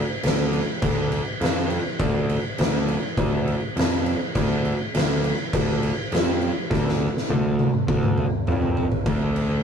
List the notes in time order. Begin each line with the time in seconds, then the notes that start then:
0.23 D2, snare, crash
0.53 crash
0.82 D2, kick, crash
1.12 crash
1.41 F2, snare, crash
1.70 crash
1.99 D2, kick, crash
2.29 crash
2.58 D2, snare, crash
2.88 crash
3.17 D2, kick, crash
3.47 crash
3.76 F2, snare, crash
4.06 crash
4.35 D2, kick, crash
4.65 crash
4.95 D2, snare, crash
5.24 crash
5.53 D2, kick, crash
5.83 crash
6.12 F2, snare, crash
6.42 crash
6.70 D2, kick, snare
6.88 snare
7.17 snare
7.29 D2, high tom
7.59 high tom
7.74 mid tom
7.88 D2, kick
8.03 mid tom
8.18 mid tom
8.47 F2, mid tom
8.62 floor tom
8.77 floor tom
8.92 floor tom
9.06 D2, kick, crash
9.36 crash